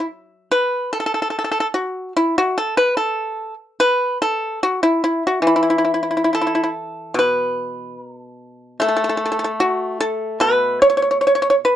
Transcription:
pipa
Already playing: F#3
0.52 B4
0.93 A4
1.00 A4
1.06 A4
1.14 A4
1.22 A4
1.30 A4
1.39 A4
1.44 A4
1.51 A4
1.60 A4
1.74 F#4
2.17 E4
2.38 F#4
2.58 A4
2.77 B4
2.97 A4
3.80 B4
4.22 A4
4.63 F#4
4.83 E4
5.04 E4
5.27 F#4
5.42 E3
5.47 E4
5.56 E4
5.63 E4
5.70 E4
5.78 E4
5.85 E4
5.94 E4
6.03 E4
6.11 E4
6.17 E4
6.24 E4
6.33 E4 A4
6.41 E4
6.47 E4
6.55 E4
6.64 E4
7.14 B2
7.19 B4
8.00 A#4
8.20 A4
8.80 A3 A4
8.88 A4
8.97 A4
9.04 A4
9.09 A4
9.17 A4
9.26 A4
9.32 A4
9.39 A4
9.44 A4
9.60 F#4
10.00 A4
10.40 B2 B4
10.82 C#5
10.90 C#5
10.97 C#5
11.02 C#5
11.11 C#5
11.21 C#5
11.27 C#5
11.35 C#5
11.42 C#5
11.50 C#5
11.65 B4

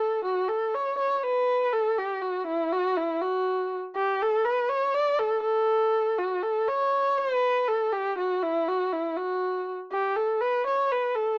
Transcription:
kamancheh
Already playing: A4
0.24 F#4
0.48 A4
0.75 C#5
0.98 C#5
1.16 C#5
1.23 B4
1.73 A4
1.98 G4
2.22 F#4
2.47 E4
2.72 F#4
2.97 E4
3.22 F#4
3.96 G4
4.22 A4
4.45 B4
4.69 C#5
4.94 D5
5.19 A4
5.42 A4
6.18 F#4
6.43 A4
6.68 C#5
7.18 B4
7.68 A4
7.93 G4
8.18 F#4
8.43 E4
8.68 F#4
8.93 E4
9.17 F#4
9.92 G4
10.16 A4
10.41 B4
10.66 C#5
10.91 B4
11.14 A4

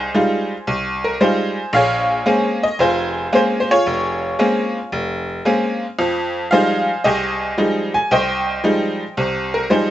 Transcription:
honky-tonk piano
Already playing: D#4 G#4 C5
0.14 G3 G#3 D#4 F4
0.67 C2
1.04 A#4
1.21 G3 G#3 D#4 F4 G#4 C5
1.73 A#1 G#4 C#5 F5
2.26 G#3 A#3 C4 C#4
2.63 D#5
2.79 F1 F4 G#4 C5
3.32 G#3 A#3 C4 C#4 C5
3.60 C5
3.71 F4 G#4 C#5
3.86 F1
4.39 G#3 A#3 C4 C#4
4.92 F1
5.45 G#3 A#3 C4 C#4
5.99 F2 F3
6.51 F3 G3 G#3 D#4 G#4 C5 F5
7.04 C2 G4 G#4 D#5
7.57 F3 G3 G#3 D#4
7.94 G#5
8.11 C2 C5 D#5 G5
8.64 F3 G3 G#3 D#4
9.17 C2 C3
9.54 A#4
9.70 F3 G3 G#3 D#4 G#4 C5

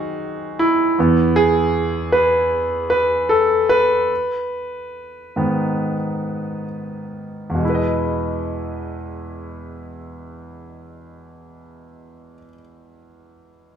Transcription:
grand piano
Already playing: D#4 F#4 G#4
0.59 E4
0.98 E2 E3 B3
1.36 G#4
2.12 B4
2.90 B4
3.29 A4
3.69 B4
5.36 G#2 D#3 B3
7.50 E2
7.55 B2
7.60 G#3
7.65 E4
7.70 B4
7.75 D#5

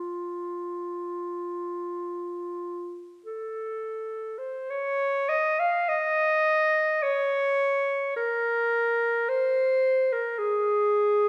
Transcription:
clarinet
Already playing: F4
3.26 A4
4.38 C5
4.70 C#5
5.29 D#5
5.60 F5
5.89 D#5
7.03 C#5
8.16 A#4
9.29 C5
10.12 A#4
10.38 G#4

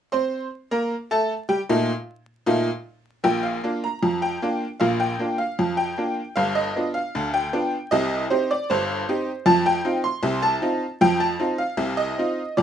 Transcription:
honky-tonk piano
0.12 C4 C5 C6
0.71 A#3 A#4 A#5
1.11 A3 A4 A5
1.49 G3 G4 G5
1.69 A#2 A3 D#4 F4
2.46 A#2 A3 D#4 F4
3.24 A#1 A#2 G5
3.43 F5
3.64 A#3 D4 F4
3.84 A#5
4.02 F2 F3
4.22 G5
4.42 A#3 D4 F4
4.80 A#1 A#2 F5
5.00 G5
5.19 A#3 D4 F4
5.38 F5
5.59 F2 F3
5.77 G5
5.98 A#3 D4 F4
6.36 G1 G2 F5
6.55 D#5
6.76 B3 D4 F4
6.94 F5
7.15 D2 D3
7.34 G5
7.53 B3 D4 F4
7.91 C2 C3 D#5
8.30 C4 D#4 G4 C5
8.51 D5
8.70 G1 G2 C5
9.08 C4 D#4 G4
9.46 F2 F3 A5
9.66 G5
9.85 C4 D#4 F4
10.04 C6
10.23 C2 C3
10.42 A5
10.62 C4 D#4 F4
11.01 F2 F3 G5
11.20 A5
11.39 C4 D#4 F4
11.58 F5
11.77 C2 C3
11.97 D#5
12.18 C4 D#4 F4
12.57 F2 F3 D5

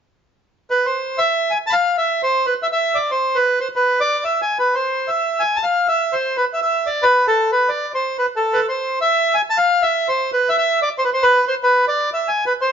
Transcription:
bandoneon
0.70 B4
0.86 C5
1.18 E5
1.51 G#5
1.67 A5 B5
1.73 F5
1.98 E5
2.23 C5
2.46 B4
2.63 E5
2.72 E5
2.95 D5
3.11 C5
3.35 B4
3.60 C5
3.76 B4
4.00 D5
4.25 E5
4.42 G#5
4.59 B4
4.75 C5
5.08 E5
5.40 G#5
5.56 A5
5.63 F5
5.88 E5
6.13 C5
6.37 B4
6.53 E5
6.62 E5
6.86 D5
7.03 B4
7.27 A4
7.52 B4
7.69 D5
7.94 C5
8.19 B4
8.36 A4
8.53 B4
8.69 C5
9.01 E5
9.34 G#5
9.50 A5
9.58 F5
9.82 E5
10.08 C5
10.33 B4
10.49 E5
10.58 E5
10.82 D5
10.98 C5
11.05 B4
11.13 C5
11.23 B4
11.48 C5
11.63 B4
11.88 D5
12.14 E5
12.28 G#5
12.46 B4
12.61 C5

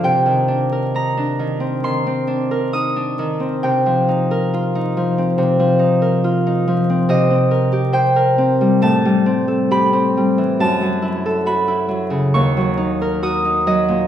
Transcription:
harp
Already playing: D4 A#4 C5
0.04 C3 G5
0.26 D#3
0.48 D4
0.72 A#4
0.95 D#4 A#5
1.17 D4
1.39 D#3
1.60 C4
1.84 D#3 C6
2.07 C4
2.27 D4
2.51 A#4
2.73 D#4 D#6
2.96 D4
3.19 D#3
3.40 C4
3.63 C3 G5
3.86 F3
4.08 D#4
4.31 A#4
4.54 F4
4.75 D#4
4.97 F3
5.18 C4
5.38 C3
5.59 F3
5.79 D#4
6.02 A#4
6.24 F4
6.47 D#4
6.68 F3
6.90 C4
7.09 C3 D#5
7.31 C4
7.51 A#4
7.72 G4
7.93 C5 G5
8.16 A#4
8.38 C4
8.61 G3
8.82 A2 A5
9.05 G3
9.26 C4
9.48 A4
9.71 G4 B5
9.93 C4
10.17 G3
10.38 E3
10.60 F#2 A5
10.82 F#3
11.02 E4
11.26 A4
11.46 F#4 B5
11.68 E4
11.88 F#3
12.10 C#3
12.34 D#2 C#6
12.57 F#3
12.77 D#4
13.01 A#4
13.22 F#4 D#6
13.45 D#4
13.67 F#3 D#5
13.88 A#2

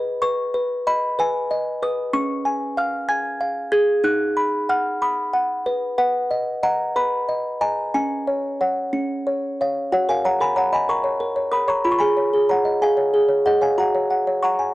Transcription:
music box
Already playing: G#4 B4 D#6
0.22 B4 C#6
0.54 B4
0.87 D#5 B5
1.19 B4 G#5
1.51 D#5
1.82 B4 D#6
2.13 C#4 C#6
2.45 G#5
2.77 F5 F6
3.09 G#5 G#6
3.41 F5
3.72 G#4 G#6
4.04 D#4 F#6
4.37 B5
4.69 F#5 F6
5.02 B5 D#6
5.33 F#5
5.66 B4
5.98 B4 F#5
6.31 D#5
6.63 D#5 F#5 A#5
6.96 B4 B5
7.29 D#5
7.61 D#5 G#5 A#5
7.94 C#4 G#5
8.27 C#5
8.61 C#5 F#5
8.93 C#4
9.27 C#5
9.61 C#5 F5
9.92 F#4 C#5 F#5
10.09 A#4 F5 G#5
10.25 C#5 F#5 A#5
10.40 A#4 G#5 B5
10.56 C#5 F#5 A#5
10.73 D#5 G#5 B5
10.89 A#4 A#5 C#6
11.04 C#5
11.20 A#4
11.36 C#5
11.52 A#4 B5 D#6
11.68 C#5 A#5 C#6
11.85 F4 B5
11.92 C#6
11.99 G#4 G#5 B5
12.17 C#5
12.33 G#4
12.49 C#5 F#5 A#5
12.65 D#5
12.82 G#4 F5 G#5
12.97 C#5
13.14 G#4
13.29 C#5
13.46 G#4 D#5 F#5
13.61 C#5 F5 G#5
13.78 F#4 F#5 A#5
13.95 C#5
14.11 F#5
14.27 C#5
14.43 F#5 A#5 C#6
14.59 G#5

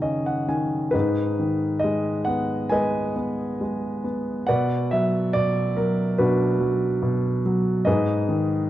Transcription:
grand piano
Already playing: F#2 C#3 D#3 A#3
0.02 C#4 D#5
0.26 F#5
0.48 D#3 G#5
0.91 G#2 D#4 G#4 B4
1.39 D#3
1.79 D#5
1.84 G#3
2.25 B3 F#5
2.69 G#3 B4 D#5 G#5
3.16 B3
3.61 G#3
4.04 B3
4.47 B2 B4 D5 F#5
4.91 F#3 E5
5.33 B2 D5
5.77 F#3 A#4
6.18 B2 D4 F#4 B4
6.60 F#3
7.02 B2
7.46 F#3
7.85 G#2 G#4 B4 D#5
8.29 D#3

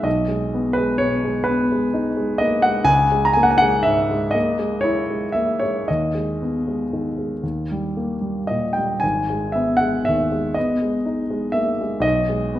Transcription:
grand piano
0.03 B1 D#5
0.28 G#3
0.54 B3
0.73 B4
0.78 G#3
0.98 B2 C#5
1.24 G#3
1.44 B4
1.48 B3
1.72 G#3
1.94 D#4
2.17 G#3
2.38 A#3 D#5
2.62 G#3 F#5
2.84 C#2 G#5
3.12 G#3
3.25 A#5
3.33 A#3 G#5
3.43 F#5
3.51 G#5
3.58 G#3 F#5
3.83 G#2 E5
4.11 G#3
4.31 A#3 D#5
4.59 G#3
4.81 E4 C#5
5.10 G#3
5.32 A#3 E5
5.59 G#3 C#5
5.88 D#2 D#5
6.15 G#3
6.42 B3
6.68 G#3
6.93 D#3
7.18 G#3
7.43 D#2
7.71 G3
7.97 A#3
8.21 G3
8.47 A#2 D#5
8.73 G5
8.77 G3
9.00 G#1 G#5
9.30 G#3
9.52 B3 E5
9.77 F#5
9.81 G#3
10.05 D#2 E5
10.32 G#3
10.54 B3 D#5
10.82 G#3
11.06 D#4
11.30 G#3
11.52 A#3 E5
11.81 G#3
12.00 B1 D#5
12.29 G#3
12.55 B3

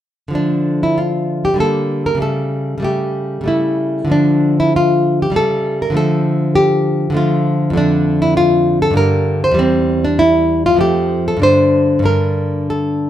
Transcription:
nylon-string guitar
0.28 D3 F3
0.33 A3 D4
0.83 E4
0.98 F4
1.45 G4
1.54 D3 G3
1.58 A#3 A4
2.06 A#4
2.15 C#3 G3
2.20 A3 A4
2.78 C#3 G3
2.82 A3 G4
3.41 C#3 G3
3.46 A3 E4
4.05 D3 F3
4.10 A3 D4
4.60 E4
4.76 F4
5.22 G4
5.30 C#3 G3 A3
5.36 A4
5.82 A#4
5.90 D3 F3
5.94 A3 A4
6.55 G4
7.10 D3 F3
7.14 A3 F4
7.70 F2 D3
7.76 A3 D4
8.22 E4
8.37 F4
8.82 A4
8.91 G2 D3
8.96 G3 A#4
9.44 C5
9.51 E2 G3
9.59 C4
10.05 D4
10.19 E4
10.66 F4
10.74 F2 F3
10.78 A3 G4
11.28 A4
11.37 G2 D3
11.42 D4 C5
11.99 G2 D3
12.04 D4 A#4
12.70 A4

